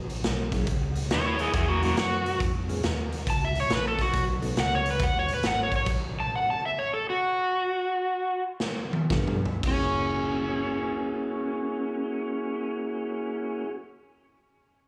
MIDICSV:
0, 0, Header, 1, 5, 480
1, 0, Start_track
1, 0, Tempo, 433213
1, 743, Time_signature, 4, 2, 24, 8
1, 6984, Tempo, 453858
1, 8904, Tempo, 507185
1, 10344, Tempo, 542495
1, 14979, End_track
2, 0, Start_track
2, 0, Title_t, "Electric slide guitar"
2, 0, Program_c, 0, 29
2, 1252, Note_on_c, 0, 64, 82
2, 1261, Note_on_c, 0, 73, 96
2, 1383, Note_off_c, 0, 64, 0
2, 1397, Note_on_c, 0, 64, 82
2, 1398, Note_off_c, 0, 73, 0
2, 1411, Note_on_c, 0, 73, 86
2, 1539, Note_off_c, 0, 64, 0
2, 1550, Note_on_c, 0, 64, 73
2, 1552, Note_off_c, 0, 73, 0
2, 1555, Note_on_c, 0, 68, 85
2, 1696, Note_off_c, 0, 64, 0
2, 1703, Note_off_c, 0, 68, 0
2, 1712, Note_on_c, 0, 64, 73
2, 1717, Note_on_c, 0, 68, 82
2, 1857, Note_off_c, 0, 64, 0
2, 1862, Note_on_c, 0, 58, 59
2, 1864, Note_off_c, 0, 68, 0
2, 1867, Note_on_c, 0, 66, 82
2, 2020, Note_off_c, 0, 66, 0
2, 2022, Note_off_c, 0, 58, 0
2, 2044, Note_on_c, 0, 58, 70
2, 2052, Note_on_c, 0, 66, 72
2, 2184, Note_off_c, 0, 58, 0
2, 2191, Note_off_c, 0, 66, 0
2, 2211, Note_on_c, 0, 66, 86
2, 2663, Note_off_c, 0, 66, 0
2, 3655, Note_on_c, 0, 81, 83
2, 3794, Note_off_c, 0, 81, 0
2, 3819, Note_on_c, 0, 76, 73
2, 3956, Note_off_c, 0, 76, 0
2, 3989, Note_on_c, 0, 73, 79
2, 4121, Note_off_c, 0, 73, 0
2, 4156, Note_on_c, 0, 71, 78
2, 4285, Note_off_c, 0, 71, 0
2, 4301, Note_on_c, 0, 69, 78
2, 4437, Note_off_c, 0, 69, 0
2, 4449, Note_on_c, 0, 66, 99
2, 4693, Note_off_c, 0, 66, 0
2, 5094, Note_on_c, 0, 78, 111
2, 5234, Note_off_c, 0, 78, 0
2, 5264, Note_on_c, 0, 73, 83
2, 5398, Note_off_c, 0, 73, 0
2, 5434, Note_on_c, 0, 71, 77
2, 5564, Note_off_c, 0, 71, 0
2, 5578, Note_on_c, 0, 78, 90
2, 5716, Note_off_c, 0, 78, 0
2, 5750, Note_on_c, 0, 73, 87
2, 5882, Note_off_c, 0, 73, 0
2, 5916, Note_on_c, 0, 71, 90
2, 6045, Note_off_c, 0, 71, 0
2, 6058, Note_on_c, 0, 78, 99
2, 6195, Note_off_c, 0, 78, 0
2, 6242, Note_on_c, 0, 73, 76
2, 6368, Note_off_c, 0, 73, 0
2, 6380, Note_on_c, 0, 73, 73
2, 6517, Note_off_c, 0, 73, 0
2, 6871, Note_on_c, 0, 81, 98
2, 7002, Note_off_c, 0, 81, 0
2, 7039, Note_on_c, 0, 78, 77
2, 7162, Note_off_c, 0, 78, 0
2, 7195, Note_on_c, 0, 81, 78
2, 7317, Note_off_c, 0, 81, 0
2, 7356, Note_on_c, 0, 76, 79
2, 7476, Note_off_c, 0, 76, 0
2, 7495, Note_on_c, 0, 73, 82
2, 7624, Note_off_c, 0, 73, 0
2, 7653, Note_on_c, 0, 69, 68
2, 7782, Note_off_c, 0, 69, 0
2, 7823, Note_on_c, 0, 66, 98
2, 9198, Note_off_c, 0, 66, 0
2, 10376, Note_on_c, 0, 61, 96
2, 13941, Note_off_c, 0, 61, 0
2, 14979, End_track
3, 0, Start_track
3, 0, Title_t, "Tonewheel organ"
3, 0, Program_c, 1, 16
3, 585, Note_on_c, 1, 54, 71
3, 585, Note_on_c, 1, 58, 59
3, 585, Note_on_c, 1, 64, 54
3, 586, Note_on_c, 1, 61, 57
3, 588, Note_on_c, 1, 68, 66
3, 730, Note_off_c, 1, 54, 0
3, 730, Note_off_c, 1, 58, 0
3, 730, Note_off_c, 1, 61, 0
3, 730, Note_off_c, 1, 64, 0
3, 732, Note_off_c, 1, 68, 0
3, 2020, Note_on_c, 1, 54, 51
3, 2020, Note_on_c, 1, 58, 57
3, 2020, Note_on_c, 1, 61, 54
3, 2020, Note_on_c, 1, 64, 52
3, 2023, Note_on_c, 1, 66, 64
3, 2167, Note_off_c, 1, 54, 0
3, 2167, Note_off_c, 1, 58, 0
3, 2167, Note_off_c, 1, 61, 0
3, 2167, Note_off_c, 1, 64, 0
3, 2168, Note_off_c, 1, 66, 0
3, 2978, Note_on_c, 1, 56, 71
3, 2980, Note_on_c, 1, 65, 72
3, 2983, Note_on_c, 1, 61, 75
3, 2984, Note_on_c, 1, 59, 67
3, 2984, Note_on_c, 1, 68, 82
3, 3126, Note_off_c, 1, 56, 0
3, 3127, Note_off_c, 1, 65, 0
3, 3128, Note_off_c, 1, 61, 0
3, 3129, Note_off_c, 1, 59, 0
3, 3129, Note_off_c, 1, 68, 0
3, 4895, Note_on_c, 1, 63, 58
3, 4896, Note_on_c, 1, 69, 70
3, 4898, Note_on_c, 1, 66, 55
3, 4899, Note_on_c, 1, 57, 62
3, 4899, Note_on_c, 1, 59, 58
3, 5044, Note_off_c, 1, 63, 0
3, 5045, Note_off_c, 1, 69, 0
3, 5046, Note_off_c, 1, 57, 0
3, 5046, Note_off_c, 1, 59, 0
3, 5046, Note_off_c, 1, 66, 0
3, 9832, Note_on_c, 1, 65, 57
3, 9835, Note_on_c, 1, 62, 57
3, 9836, Note_on_c, 1, 67, 55
3, 9837, Note_on_c, 1, 59, 57
3, 9840, Note_on_c, 1, 69, 66
3, 10131, Note_off_c, 1, 65, 0
3, 10133, Note_off_c, 1, 62, 0
3, 10133, Note_off_c, 1, 67, 0
3, 10134, Note_off_c, 1, 59, 0
3, 10135, Note_off_c, 1, 69, 0
3, 10279, Note_on_c, 1, 58, 62
3, 10311, Note_on_c, 1, 61, 58
3, 10335, Note_on_c, 1, 64, 56
3, 10363, Note_on_c, 1, 66, 63
3, 10392, Note_on_c, 1, 68, 71
3, 13885, Note_off_c, 1, 58, 0
3, 13914, Note_off_c, 1, 61, 0
3, 13936, Note_off_c, 1, 64, 0
3, 13964, Note_off_c, 1, 66, 0
3, 13993, Note_off_c, 1, 68, 0
3, 14979, End_track
4, 0, Start_track
4, 0, Title_t, "Fingered electric bass"
4, 0, Program_c, 2, 33
4, 0, Note_on_c, 2, 34, 82
4, 248, Note_off_c, 2, 34, 0
4, 281, Note_on_c, 2, 35, 83
4, 733, Note_off_c, 2, 35, 0
4, 740, Note_on_c, 2, 37, 83
4, 1207, Note_off_c, 2, 37, 0
4, 1240, Note_on_c, 2, 39, 75
4, 1697, Note_off_c, 2, 39, 0
4, 1706, Note_on_c, 2, 40, 77
4, 2170, Note_off_c, 2, 40, 0
4, 2187, Note_on_c, 2, 42, 79
4, 2650, Note_off_c, 2, 42, 0
4, 2664, Note_on_c, 2, 41, 85
4, 3129, Note_off_c, 2, 41, 0
4, 3134, Note_on_c, 2, 39, 74
4, 3604, Note_off_c, 2, 39, 0
4, 3621, Note_on_c, 2, 37, 83
4, 4087, Note_off_c, 2, 37, 0
4, 4093, Note_on_c, 2, 34, 82
4, 4563, Note_off_c, 2, 34, 0
4, 4581, Note_on_c, 2, 35, 87
4, 5047, Note_off_c, 2, 35, 0
4, 5066, Note_on_c, 2, 37, 82
4, 5529, Note_off_c, 2, 37, 0
4, 5538, Note_on_c, 2, 39, 84
4, 6005, Note_off_c, 2, 39, 0
4, 6016, Note_on_c, 2, 32, 93
4, 6484, Note_off_c, 2, 32, 0
4, 6498, Note_on_c, 2, 34, 88
4, 6903, Note_off_c, 2, 34, 0
4, 9838, Note_on_c, 2, 43, 83
4, 10326, Note_off_c, 2, 43, 0
4, 10338, Note_on_c, 2, 30, 91
4, 13904, Note_off_c, 2, 30, 0
4, 14979, End_track
5, 0, Start_track
5, 0, Title_t, "Drums"
5, 106, Note_on_c, 9, 42, 55
5, 217, Note_off_c, 9, 42, 0
5, 264, Note_on_c, 9, 42, 83
5, 270, Note_on_c, 9, 38, 117
5, 375, Note_off_c, 9, 42, 0
5, 381, Note_off_c, 9, 38, 0
5, 577, Note_on_c, 9, 36, 70
5, 578, Note_on_c, 9, 42, 62
5, 585, Note_on_c, 9, 38, 31
5, 688, Note_off_c, 9, 36, 0
5, 689, Note_off_c, 9, 42, 0
5, 696, Note_off_c, 9, 38, 0
5, 742, Note_on_c, 9, 36, 112
5, 743, Note_on_c, 9, 42, 77
5, 853, Note_off_c, 9, 36, 0
5, 854, Note_off_c, 9, 42, 0
5, 1058, Note_on_c, 9, 42, 57
5, 1169, Note_off_c, 9, 42, 0
5, 1223, Note_on_c, 9, 42, 89
5, 1230, Note_on_c, 9, 38, 116
5, 1334, Note_off_c, 9, 42, 0
5, 1340, Note_off_c, 9, 38, 0
5, 1539, Note_on_c, 9, 42, 65
5, 1650, Note_off_c, 9, 42, 0
5, 1702, Note_on_c, 9, 36, 112
5, 1706, Note_on_c, 9, 42, 92
5, 1813, Note_off_c, 9, 36, 0
5, 1817, Note_off_c, 9, 42, 0
5, 2023, Note_on_c, 9, 42, 56
5, 2134, Note_off_c, 9, 42, 0
5, 2183, Note_on_c, 9, 42, 85
5, 2189, Note_on_c, 9, 38, 110
5, 2294, Note_off_c, 9, 42, 0
5, 2300, Note_off_c, 9, 38, 0
5, 2504, Note_on_c, 9, 42, 61
5, 2615, Note_off_c, 9, 42, 0
5, 2661, Note_on_c, 9, 42, 78
5, 2663, Note_on_c, 9, 36, 105
5, 2771, Note_off_c, 9, 42, 0
5, 2774, Note_off_c, 9, 36, 0
5, 2984, Note_on_c, 9, 42, 53
5, 3095, Note_off_c, 9, 42, 0
5, 3139, Note_on_c, 9, 42, 89
5, 3146, Note_on_c, 9, 38, 102
5, 3250, Note_off_c, 9, 42, 0
5, 3257, Note_off_c, 9, 38, 0
5, 3462, Note_on_c, 9, 42, 61
5, 3573, Note_off_c, 9, 42, 0
5, 3622, Note_on_c, 9, 36, 106
5, 3625, Note_on_c, 9, 42, 83
5, 3733, Note_off_c, 9, 36, 0
5, 3736, Note_off_c, 9, 42, 0
5, 3936, Note_on_c, 9, 42, 50
5, 4047, Note_off_c, 9, 42, 0
5, 4099, Note_on_c, 9, 42, 84
5, 4106, Note_on_c, 9, 38, 108
5, 4210, Note_off_c, 9, 42, 0
5, 4216, Note_off_c, 9, 38, 0
5, 4417, Note_on_c, 9, 36, 67
5, 4420, Note_on_c, 9, 42, 56
5, 4427, Note_on_c, 9, 38, 27
5, 4528, Note_off_c, 9, 36, 0
5, 4531, Note_off_c, 9, 42, 0
5, 4538, Note_off_c, 9, 38, 0
5, 4583, Note_on_c, 9, 36, 105
5, 4586, Note_on_c, 9, 42, 82
5, 4694, Note_off_c, 9, 36, 0
5, 4696, Note_off_c, 9, 42, 0
5, 4900, Note_on_c, 9, 42, 58
5, 5011, Note_off_c, 9, 42, 0
5, 5061, Note_on_c, 9, 42, 90
5, 5068, Note_on_c, 9, 38, 107
5, 5172, Note_off_c, 9, 42, 0
5, 5179, Note_off_c, 9, 38, 0
5, 5381, Note_on_c, 9, 42, 61
5, 5491, Note_off_c, 9, 42, 0
5, 5532, Note_on_c, 9, 42, 86
5, 5537, Note_on_c, 9, 36, 120
5, 5642, Note_off_c, 9, 42, 0
5, 5648, Note_off_c, 9, 36, 0
5, 5854, Note_on_c, 9, 42, 59
5, 5965, Note_off_c, 9, 42, 0
5, 6018, Note_on_c, 9, 42, 87
5, 6024, Note_on_c, 9, 38, 112
5, 6128, Note_off_c, 9, 42, 0
5, 6135, Note_off_c, 9, 38, 0
5, 6334, Note_on_c, 9, 36, 73
5, 6334, Note_on_c, 9, 42, 55
5, 6444, Note_off_c, 9, 42, 0
5, 6445, Note_off_c, 9, 36, 0
5, 6495, Note_on_c, 9, 42, 80
5, 6495, Note_on_c, 9, 49, 73
5, 6498, Note_on_c, 9, 36, 102
5, 6605, Note_off_c, 9, 42, 0
5, 6605, Note_off_c, 9, 49, 0
5, 6609, Note_off_c, 9, 36, 0
5, 9360, Note_on_c, 9, 38, 67
5, 9455, Note_off_c, 9, 38, 0
5, 9672, Note_on_c, 9, 48, 68
5, 9767, Note_off_c, 9, 48, 0
5, 9835, Note_on_c, 9, 36, 93
5, 9836, Note_on_c, 9, 47, 76
5, 9841, Note_on_c, 9, 38, 93
5, 9929, Note_off_c, 9, 36, 0
5, 9930, Note_off_c, 9, 47, 0
5, 9936, Note_off_c, 9, 38, 0
5, 9998, Note_on_c, 9, 45, 80
5, 10093, Note_off_c, 9, 45, 0
5, 10169, Note_on_c, 9, 43, 77
5, 10263, Note_off_c, 9, 43, 0
5, 10336, Note_on_c, 9, 36, 108
5, 10340, Note_on_c, 9, 49, 84
5, 10425, Note_off_c, 9, 36, 0
5, 10429, Note_off_c, 9, 49, 0
5, 14979, End_track
0, 0, End_of_file